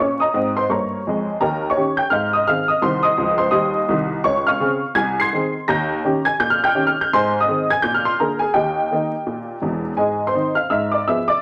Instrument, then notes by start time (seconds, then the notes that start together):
honky-tonk piano
0.00 A#2 C#4 C#5 C#6
0.20 D#5 A#5 D#6
0.34 G#2 C4
0.57 C5 C6
0.69 G2 A#3 C#5 A#5 C#6
1.07 F2 G#3
1.41 D#2 A#4 G5 A#5
1.70 C#5 C#6
1.77 D#3 C#4 G4
1.97 G5 G6
2.10 G#2 F5 F6
2.33 D#5 D#6
2.47 D#3 C4 G#4 F5 F6
2.68 D#5 D#6
2.82 C2 D#3 C5 C6
3.03 D#5 C6 D#6
3.18 C#2 F3
3.38 C5 C6
3.51 D#2 G3 D#5 C6 D#6
3.89 C2 D#3
4.24 C#2 C#5 C#6
4.47 F5 C#6 F6
4.60 C#3 C4 G#4
4.95 C2 G#5 G#6
5.20 C6 G#6 C7
5.33 D#3 C4 G#4
5.68 D#2 A#5 G6 A#6
6.05 D#3 C#4 G4
6.25 G#5 G#6
6.40 A#2 G6
6.50 F6
6.64 G5 G6
6.75 D#3 C#4 G4
6.87 F6
7.01 G6
7.13 G#2 C5 G#5 C6
7.41 D#5 D#6
7.48 D#3 C4 G#4
7.70 G#5 G#6
7.82 A#2 G6
7.94 F6
8.05 C6
8.20 D3 A#3 G#4 A#4 A#5
8.39 G#4 G#5
8.54 D#2 G4 D#5 G5
8.91 D#3 A#3 D#4
9.27 A#2
9.62 E1 E2
9.97 G#2 G#4 D#5 G#5
10.27 C5 C6
10.34 D#3 C4 D#4
10.55 F5 F6
10.70 G#2 E5 E6
10.92 D5 D6
11.08 F3 B3 G#4 E5 E6
11.28 D5 D6